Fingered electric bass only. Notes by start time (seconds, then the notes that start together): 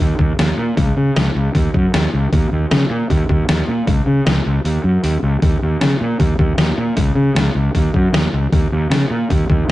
0.00 D#2
0.19 D#2
0.39 D#2
0.58 A#2
0.77 C#2
0.97 C#3
1.16 C#2
1.35 C#2
1.55 D#2
1.75 F#2
1.94 D#2
2.13 C#2
2.33 D#2
2.52 D#2
2.71 C#3
2.90 A#2
3.10 D#2
3.29 D#2
3.49 D#2
3.68 A#2
3.87 C#2
4.06 C#3
4.27 C#2
4.46 C#2
4.64 D#2
4.84 F#2
5.04 D#2
5.23 C#2
5.42 D#2
5.62 D#2
5.81 C#3
6.01 A#2
6.20 D#2
6.39 D#2
6.58 D#2
6.78 A#2
6.97 C#2
7.15 C#3
7.35 C#2
7.55 C#2
7.75 D#2
7.95 F#2
8.13 D#2
8.33 C#2
8.52 D#2
8.72 D#2
8.90 C#3
9.10 A#2
9.31 D#2
9.50 D#2
9.68 D#2